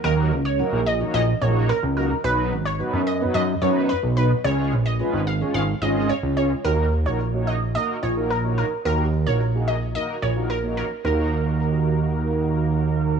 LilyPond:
<<
  \new Staff \with { instrumentName = "Synth pluck" } { \time 4/4 \key ees \minor \tempo 4 = 109 bes'16 r8 des''16 r8 ees''8 ees''8 des''16 r16 bes'16 r16 bes'16 r16 | b'16 r8 des''16 r8 dis''8 dis''8 des''16 r16 b'16 r16 b'16 r16 | des''16 r8 ees''16 r8 f''8 f''8 ees''16 r16 des''16 r16 des''16 r16 | bes'16 r8 des''16 r8 ees''8 ees''8 des''16 r16 bes'16 r16 bes'16 r16 |
bes'16 r8 des''16 r8 ees''8 ees''8 des''16 r16 bes'16 r16 bes'16 r16 | bes'2. r4 | }
  \new Staff \with { instrumentName = "Analog polysynth" } { \time 4/4 \key ees \minor <ges bes ees' ges' bes'>8 r8 <ges bes ees' ges' bes'>8 r16 <ges bes ees' ges' des''>8 r16 <ges bes ees' ges' des''>8 r8 <ges bes ees' ges' bes'>16 r16 | <fis b dis' fis' b'>8 r8 <fis b dis' fis' b'>8 r16 <fis b dis' fis' b'>8 r16 <fis b dis' fis' b'>8 r8 <fis b dis' fis' b'>16 r16 | <aes des' f' aes' des''>8 r8 <aes des' f' aes' ces''>8 r16 <aes des' f' aes' des''>8 r16 <aes des' f' aes' ees''>8 r8 <aes des' f' aes' des''>16 r16 | <bes ees' ges' bes'>8 r16 <bes ees' ges' bes'>16 r16 <bes ees' ges' des''>8 r16 <bes ees' ges' bes'>8 r16 <bes ees' ges' bes'>16 r16 <bes ees' ges' des''>8 r16 |
<bes ees' ges' bes'>8 r16 <bes ees' ges' bes'>16 r16 <bes ees' ges' aes'>8 r16 <bes ees' ges' bes'>8 r16 <bes ees' ges' bes'>16 r16 <bes ees' ges' des''>8 r16 | <bes ees' ges' bes'>1 | }
  \new Staff \with { instrumentName = "Analog synth bass" } { \clef bass \time 4/4 \key ees \minor ees,8 des,8. bes,,8. bes,,8 bes,,8. des,8. | b,,8 aes,,8. fis,8. fis,8 fis,8. b,,8. | des,8 bes,,8. aes,,8. aes,,8 aes,,8. des,8. | ees,8. bes,,4.~ bes,,16 bes,,4. |
ees,8. bes,,4.~ bes,,16 bes,,4. | ees,1 | }
>>